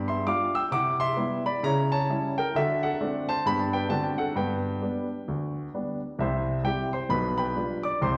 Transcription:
0.00 0.19 G2 medium
0.00 0.28 B3 soft
0.00 0.28 D5 medium
0.00 0.28 B5 medium
0.08 0.26 E5 medium
0.08 0.26 C6 medium
0.26 0.51 G3 soft
0.26 0.51 D4 soft
0.26 0.51 F4 soft
0.26 0.53 F5 medium
0.26 0.54 D6 medium
0.55 0.72 G5 medium
0.55 0.72 E6 medium
0.71 1.10 C3 medium
0.71 0.98 E4 soft
0.71 0.98 F#5 medium
0.71 1.00 D6 loud
1.00 1.43 E5 medium
1.00 1.45 C6 loud
1.17 1.42 G3 soft
1.17 1.42 B3 soft
1.17 1.42 E4 soft
1.46 1.63 D5 medium
1.46 1.64 B5 medium
1.63 2.02 C#3 medium
1.63 1.90 E4 medium
1.63 1.90 C#5 medium
1.63 1.91 A#5 loud
1.92 2.34 C#5 medium
1.92 2.37 A5 medium
2.09 2.34 G3 soft
2.09 2.35 C#4 soft
2.09 2.35 E4 medium
2.38 2.55 A#4 medium
2.38 2.55 G5 medium
2.55 2.93 D3 medium
2.55 2.81 F#4 medium
2.55 2.82 A4 medium
2.55 2.83 E5 loud
2.83 3.25 A4 medium
2.83 3.28 F#5 medium
3.01 3.26 A3 soft
3.01 3.26 C4 soft
3.01 3.26 D4 medium
3.29 3.45 C5 medium
3.29 3.46 A5 medium
3.46 3.84 G2 medium
3.46 3.71 G3 soft
3.46 3.72 B3 medium
3.46 3.71 D4 soft
3.46 3.60 B5 loud
3.59 3.73 A5 medium
3.73 3.90 B4 medium
3.73 3.91 G5 medium
3.89 4.29 D3 medium
3.89 4.15 A3 soft
3.89 4.15 C4 soft
3.89 4.15 D4 soft
3.89 4.16 F#4 soft
3.89 4.04 A5 medium
4.03 4.18 G5 medium
4.18 4.36 A4 medium
4.18 4.36 F#5 medium
4.36 4.75 G2 medium
4.36 4.62 B3 soft
4.36 5.97 B4 soft
4.36 6.01 G5 medium
4.82 5.07 G3 soft
4.82 5.07 B3 soft
4.82 5.07 D4 soft
5.28 5.67 D2 medium
5.75 5.99 G3 soft
5.75 5.99 B3 soft
5.75 5.99 D4 soft
6.19 6.58 C2 medium
6.19 6.58 C3 medium
6.19 6.63 E4 medium
6.19 6.63 C5 medium
6.19 6.66 E5 medium
6.63 6.89 G3 soft
6.63 6.90 C4 soft
6.63 6.90 E4 soft
6.63 6.91 G4 medium
6.63 6.92 G5 medium
6.93 7.10 C5 medium
6.93 7.11 C6 medium
7.09 7.49 B1 medium
7.09 7.49 B2 medium
7.09 7.37 B4 medium
7.09 7.36 B5 medium
7.38 7.81 B4 medium
7.38 7.81 G5 medium
7.38 7.84 B5 medium
7.56 7.81 G3 soft
7.56 7.81 D4 soft
7.56 7.82 F4 soft
7.83 8.01 D5 medium
7.83 8.02 D6 medium
8.01 8.17 C2 medium
8.01 8.17 C3 medium
8.01 8.17 C5 medium
8.01 8.17 C6 medium

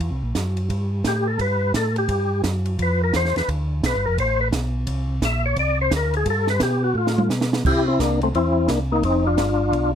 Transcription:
0.00 0.11 E2 medium
0.00 kick soft
0.00 ride medium
0.10 0.23 C2 medium
0.22 0.34 A#1 medium
0.35 0.69 F#2 medium
0.35 kick soft
0.35 snare medium
0.35 hi-hat pedal medium
0.35 ride medium
0.57 ride soft
0.69 1.04 G2 medium
0.69 kick soft
0.69 ride medium
1.04 1.38 A2 medium
1.04 1.27 G4 medium
1.04 kick soft
1.04 snare medium
1.04 hi-hat pedal medium
1.04 ride medium
1.28 1.40 A4 medium
1.39 1.73 G2 medium
1.39 1.73 B4 medium
1.39 kick soft
1.39 ride medium
1.74 2.08 A2 medium
1.74 1.96 A4 medium
1.74 kick soft
1.74 snare medium
1.74 hi-hat pedal medium
1.74 ride medium
1.96 2.42 G4 medium
1.96 ride medium
2.08 2.43 G2 medium
2.08 kick soft
2.08 ride medium
2.44 2.77 F#2 medium
2.44 kick soft
2.44 snare medium
2.44 hi-hat pedal soft
2.44 ride medium
2.65 ride medium
2.79 3.12 F2 medium
2.79 3.02 B4 medium
2.79 kick soft
2.79 ride medium
3.04 3.15 A#4 medium
3.13 3.33 E2 medium
3.13 3.36 C5 medium
3.13 kick soft
3.13 snare medium
3.13 hi-hat pedal soft
3.13 ride medium
3.25 snare soft
3.36 3.42 E2 soft
3.36 3.49 B4 medium
3.36 snare soft
3.36 ride soft
3.48 3.82 D2 medium
3.48 kick soft
3.48 ride medium
3.83 3.94 B1 medium
3.83 4.06 B4 medium
3.83 kick soft
3.83 snare medium
3.83 hi-hat pedal medium
3.83 ride medium
3.96 4.07 G1 medium
4.06 4.18 F1 medium
4.06 4.18 A#4 medium
4.18 4.51 A1 medium
4.18 4.40 C5 medium
4.18 kick soft
4.18 ride medium
4.41 4.48 B4 loud
4.52 4.86 B1 medium
4.52 kick soft
4.52 snare medium
4.52 hi-hat pedal soft
4.52 ride medium
4.87 5.21 C2 medium
4.87 kick soft
4.87 ride medium
5.21 5.55 A#1 loud
5.21 5.44 E5 medium
5.21 kick soft
5.21 snare medium
5.21 hi-hat pedal medium
5.21 ride medium
5.46 5.57 C#5 medium
5.56 5.90 C2 medium
5.56 5.79 D5 loud
5.56 kick soft
5.56 ride medium
5.81 5.93 C5 medium
5.91 6.25 D2 medium
5.91 kick soft
5.91 snare medium
5.91 hi-hat pedal medium
5.91 ride medium
5.96 6.15 A#4 medium
6.14 6.28 G#4 medium
6.14 ride soft
6.26 6.60 G2 medium
6.26 kick soft
6.26 ride medium
6.30 6.49 A4 medium
6.47 6.62 B4 loud
6.47 snare soft
6.60 6.94 B2 loud
6.60 6.83 G4 medium
6.60 kick soft
6.60 snare medium
6.60 hi-hat pedal medium
6.60 ride medium
6.84 6.96 F#4 medium
6.95 7.29 A2 medium
6.95 7.29 F4 medium
7.07 snare medium
7.18 mid tom medium
7.29 7.63 B2 loud
7.29 snare medium
7.29 hi-hat pedal medium
7.41 snare medium
7.53 snare medium
7.65 7.98 C3 medium
7.65 7.86 E4 medium
7.65 7.86 G4 loud
7.65 kick medium
7.65 crash medium
7.88 7.99 C4 medium
7.88 7.99 E4 medium
7.99 8.33 C2 loud
7.99 8.20 A#3 medium
7.99 8.20 D4 medium
7.99 kick soft
7.99 snare medium
7.99 hi-hat pedal medium
7.99 ride medium
8.21 8.29 A3 medium
8.21 8.29 C4 medium
8.21 ride soft
8.34 8.68 E2 medium
8.34 8.67 C4 medium
8.34 8.71 E4 medium
8.34 kick soft
8.34 ride medium
8.68 9.02 C2 medium
8.68 8.79 A#3 medium
8.68 8.79 D4 medium
8.68 kick soft
8.68 snare medium
8.68 hi-hat pedal medium
8.68 ride medium
8.92 9.03 A#3 medium
8.92 9.04 D#4 medium
9.02 9.37 F1 medium
9.02 9.25 C4 medium
9.02 9.27 D#4 medium
9.02 kick soft
9.02 ride medium
9.27 9.91 D4 medium
9.27 9.92 F4 medium
9.37 9.72 G1 medium
9.37 kick soft
9.37 snare medium
9.37 hi-hat pedal medium
9.37 ride medium
9.72 9.95 B1 medium
9.72 kick soft
9.72 ride medium

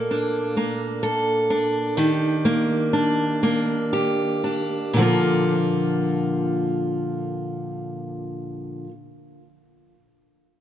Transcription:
0.00 1.97 A#2 medium
0.00 0.56 A#3 soft
0.00 1.02 A4 medium
0.11 1.50 D4 soft
0.57 2.45 A#3 soft
1.03 1.97 A4 medium
1.50 2.93 D4 soft
1.97 4.96 D#3 medium
1.97 3.92 G4 medium
2.45 3.42 A#3 soft
2.93 4.43 D4 soft
3.43 5.00 A#3 soft
3.93 5.04 G4 soft
4.44 5.02 D4 soft
4.93 8.84 A#2 soft
4.93 8.86 D3 soft
4.98 8.89 F3 soft
4.98 8.90 A#3 soft
4.98 8.92 F4 medium
5.04 8.94 A4 soft

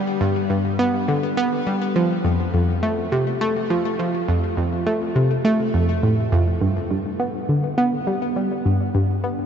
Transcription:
0.21 0.34 G2 medium
0.50 0.78 G2 medium
0.79 1.00 B3 medium
1.08 1.21 D3 medium
1.37 1.50 B3 loud
1.67 1.88 G3 medium
1.96 2.08 F3 medium
2.25 2.37 F2 medium
2.54 2.81 F2 medium
2.83 3.04 A3 medium
3.12 3.25 C3 medium
3.41 3.54 A3 medium
3.70 3.91 F3 medium
3.99 4.12 F3 medium
4.28 4.41 F2 medium
4.57 4.85 F2 medium
4.87 5.08 A3 medium
5.16 5.28 C3 medium
5.45 5.58 A3 loud
5.74 5.95 F2 medium
6.03 6.24 A2 medium
6.32 6.54 F2 loud
6.61 6.74 G2 medium
6.91 7.18 G2 medium
7.20 7.41 B3 medium
7.49 7.62 D3 medium
7.78 7.91 B3 loud
8.07 8.28 G3 medium
8.36 8.49 G3 medium
8.66 8.78 G2 medium
8.95 9.22 G2 medium
9.24 9.45 B3 medium

